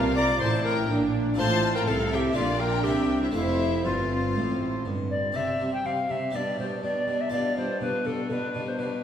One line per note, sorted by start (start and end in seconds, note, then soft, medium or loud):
0.00 0.40 C2 medium
0.00 0.37 C3 medium
0.00 0.40 C3 medium
0.00 1.32 A#3 medium
0.00 1.33 D4 medium
0.00 0.39 F4 medium
0.00 1.34 F4 medium
0.00 0.15 A#4 medium
0.00 0.17 F5 medium
0.15 0.39 D5 medium
0.15 0.25 A#5 medium
0.15 0.40 D6 loud
0.39 0.89 A1 medium
0.39 0.89 A2 medium
0.39 0.86 A2 medium
0.39 0.89 E4 medium
0.39 0.63 C5 loud
0.39 0.65 A5 medium
0.39 0.49 C6 loud
0.64 0.88 A#4 medium
0.64 0.90 G5 medium
0.64 0.89 A#5 medium
0.89 1.37 A#1 medium
0.89 1.37 A#2 medium
0.89 1.34 A#2 medium
0.89 1.38 D4 medium
1.34 1.86 A1 medium
1.34 1.86 A2 medium
1.34 2.31 C4 medium
1.34 2.32 F4 medium
1.34 1.87 F4 medium
1.34 1.76 C5 loud
1.38 1.83 A2 medium
1.38 1.73 A5 loud
1.38 1.73 C6 loud
1.75 1.89 A#4 medium
1.75 1.87 G5 medium
1.75 1.81 A#5 medium
1.87 2.35 C2 medium
1.87 2.35 C3 medium
1.87 2.32 C3 medium
1.87 2.36 E4 medium
1.87 2.11 A4 medium
1.87 2.12 F5 medium
1.87 1.95 A5 loud
2.11 2.35 G4 medium
2.11 2.16 A4 medium
2.11 2.37 E5 medium
2.11 2.20 G5 medium
2.32 2.84 A#1 medium
2.32 2.84 A#2 medium
2.32 2.82 A#3 medium
2.32 2.82 D4 medium
2.32 3.35 D4 medium
2.32 2.83 F4 medium
2.32 2.61 F4 medium
2.36 2.82 A#2 medium
2.36 2.61 D5 medium
2.36 2.60 F5 medium
2.59 2.85 A#4 medium
2.59 2.86 G5 medium
2.59 2.85 A#5 loud
2.83 3.35 C2 medium
2.83 3.35 C3 medium
2.83 3.32 C3 medium
2.83 3.31 C4 medium
2.83 3.34 E4 soft
2.83 3.21 G4 medium
2.83 3.22 E5 medium
2.83 3.23 G5 medium
3.21 3.27 E4 medium
3.21 3.28 C5 medium
3.21 3.34 E5 medium
3.31 3.81 A3 medium
3.31 3.82 C4 medium
3.31 5.11 C4 medium
3.31 3.84 E4 medium
3.31 5.30 F4 medium
3.35 3.84 F1 medium
3.35 3.84 F2 medium
3.35 3.81 F2 medium
3.35 3.84 C5 medium
3.35 3.84 E5 loud
3.85 4.35 G1 medium
3.85 4.36 G2 medium
3.85 4.32 G2 medium
3.85 4.83 F4 medium
3.85 4.83 C5 medium
3.85 4.85 F5 medium
4.35 4.85 A1 medium
4.35 4.81 A2 medium
4.35 4.86 A2 medium
4.85 5.35 G1 medium
4.85 5.35 G2 medium
4.85 5.31 G2 medium
5.10 5.37 D5 medium
5.32 5.57 C3 soft
5.32 5.43 C3 soft
5.32 5.59 G3 soft
5.32 6.29 C4 soft
5.32 5.60 C4 soft
5.32 6.30 G4 soft
5.32 5.59 G4 soft
5.32 5.72 E5 medium
5.60 5.82 C3 soft
5.60 5.68 C3 soft
5.60 5.83 G3 soft
5.60 5.84 C4 soft
5.60 5.84 G4 soft
5.74 5.87 G5 medium
5.84 5.92 C3 soft
5.84 6.07 C3 soft
5.84 6.08 G3 soft
5.84 6.09 C4 soft
5.84 6.08 G4 soft
5.84 6.12 F5 medium
6.09 6.17 C3 soft
6.09 6.31 C3 soft
6.09 6.32 G3 soft
6.09 6.34 C4 soft
6.09 6.33 G4 soft
6.09 6.37 E5 medium
6.30 6.42 B2 soft
6.30 6.56 B2 soft
6.30 6.58 G3 soft
6.30 7.28 D4 soft
6.30 7.28 G4 soft
6.30 6.58 G4 soft
6.35 6.59 D4 soft
6.35 6.58 D5 medium
6.58 6.66 B2 soft
6.58 6.81 B2 soft
6.58 6.82 G3 soft
6.58 6.83 D4 soft
6.58 6.82 G4 soft
6.58 6.65 C5 medium
6.83 6.91 B2 soft
6.83 7.05 B2 soft
6.83 7.06 G3 soft
6.83 7.07 D4 soft
6.83 7.07 G4 soft
6.83 7.22 D5 medium
7.07 7.15 B2 soft
7.07 7.30 B2 soft
7.07 7.30 G3 soft
7.07 7.31 D4 soft
7.07 7.32 G4 soft
7.20 7.31 E5 medium
7.29 7.40 B2 soft
7.29 7.54 B2 soft
7.29 7.55 G3 soft
7.29 7.56 D4 soft
7.29 9.04 F4 soft
7.29 7.56 F4 soft
7.29 9.04 G4 soft
7.29 7.56 D5 medium
7.56 7.64 B2 soft
7.56 7.79 B2 soft
7.56 7.79 G3 soft
7.56 7.80 D4 soft
7.56 7.80 F4 soft
7.56 7.80 C5 medium
7.81 7.89 B2 soft
7.81 8.03 B2 soft
7.81 8.04 G3 soft
7.81 8.05 D4 soft
7.81 8.04 F4 soft
7.81 8.07 B4 medium
8.05 8.27 B2 soft
8.05 8.13 B2 soft
8.05 8.28 G3 soft
8.05 8.29 D4 soft
8.05 8.29 F4 soft
8.05 8.30 A4 medium
8.29 8.52 B2 soft
8.29 8.38 B2 soft
8.29 8.52 G3 soft
8.29 8.54 D4 soft
8.29 8.53 F4 soft
8.29 8.69 B4 medium
8.53 8.77 B2 soft
8.53 8.63 B2 soft
8.53 8.77 G3 soft
8.53 8.78 D4 soft
8.53 8.78 F4 soft
8.68 8.81 C5 medium
8.78 9.01 B2 soft
8.78 8.87 B2 soft
8.78 9.02 G3 soft
8.78 9.03 D4 soft
8.78 9.02 F4 soft
8.78 9.04 B4 medium